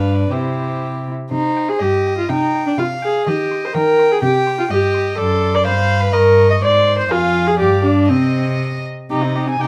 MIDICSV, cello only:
0, 0, Header, 1, 2, 480
1, 0, Start_track
1, 0, Key_signature, -3, "minor"
1, 0, Tempo, 501672
1, 296, Time_signature, 2, 2, 24, 8
1, 1729, Tempo, 481928
1, 7009, Tempo, 497925
1, 9483, End_track
2, 0, Start_track
2, 0, Title_t, "Cello"
2, 0, Program_c, 0, 42
2, 0, Note_on_c, 0, 43, 40
2, 291, Note_off_c, 0, 43, 0
2, 297, Note_on_c, 0, 48, 34
2, 1051, Note_off_c, 0, 48, 0
2, 1256, Note_on_c, 0, 48, 47
2, 1629, Note_off_c, 0, 48, 0
2, 1727, Note_on_c, 0, 43, 39
2, 2110, Note_off_c, 0, 43, 0
2, 2211, Note_on_c, 0, 48, 44
2, 2594, Note_off_c, 0, 48, 0
2, 2695, Note_on_c, 0, 48, 45
2, 3077, Note_off_c, 0, 48, 0
2, 3181, Note_on_c, 0, 51, 54
2, 3561, Note_off_c, 0, 51, 0
2, 3663, Note_on_c, 0, 51, 49
2, 4040, Note_off_c, 0, 51, 0
2, 4135, Note_on_c, 0, 48, 56
2, 4514, Note_off_c, 0, 48, 0
2, 4610, Note_on_c, 0, 43, 48
2, 4987, Note_off_c, 0, 43, 0
2, 5087, Note_on_c, 0, 42, 46
2, 5567, Note_on_c, 0, 43, 51
2, 5582, Note_off_c, 0, 42, 0
2, 6042, Note_off_c, 0, 43, 0
2, 6048, Note_on_c, 0, 43, 54
2, 6519, Note_off_c, 0, 43, 0
2, 6528, Note_on_c, 0, 44, 48
2, 7000, Note_off_c, 0, 44, 0
2, 7008, Note_on_c, 0, 41, 52
2, 7484, Note_on_c, 0, 43, 46
2, 7498, Note_off_c, 0, 41, 0
2, 7969, Note_on_c, 0, 48, 49
2, 7984, Note_off_c, 0, 43, 0
2, 8740, Note_off_c, 0, 48, 0
2, 8941, Note_on_c, 0, 48, 55
2, 9357, Note_off_c, 0, 48, 0
2, 9407, Note_on_c, 0, 48, 47
2, 9483, Note_off_c, 0, 48, 0
2, 9483, End_track
0, 0, End_of_file